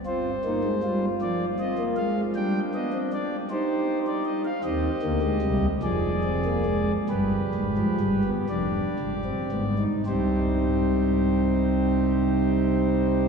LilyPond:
<<
  \new Staff \with { instrumentName = "Pipe organ" } { \time 6/8 \key c \minor \tempo 4. = 49 << { c''4. d''8 ees''8 f''8 | g''8 ees''8 d''8 c''8. d''16 ees''16 f''16 | ees''4. d''4. | b'4. d''4. |
<g c' c''>2. | } \\ { f'8 ees'8 f'2 | d'4. g'4. | g'4. aes'4. | g'2. |
g'2. | } >> }
  \new Staff \with { instrumentName = "Pipe organ" } { \clef bass \time 6/8 \key c \minor << { c'8 bes16 aes16 g8 f8 c'16 bes16 aes8 | g8 b16 c'16 d'8 ees'4. | c'8 bes16 aes16 g8 f8 c'16 bes16 aes8 | g8. f16 g16 b16 d'8. c'16 b16 ees'16 |
ees'2. | } \\ { r2. | r2. | <ees, ees>8 <d, d>8 <c, c>8 <f,, f,>4. | <g,, g,>8 <aes,, aes,>8 <g,, g,>8 <f,, f,>8 <g,, g,>8 <aes,, aes,>8 |
<c, c>2. | } >> }
>>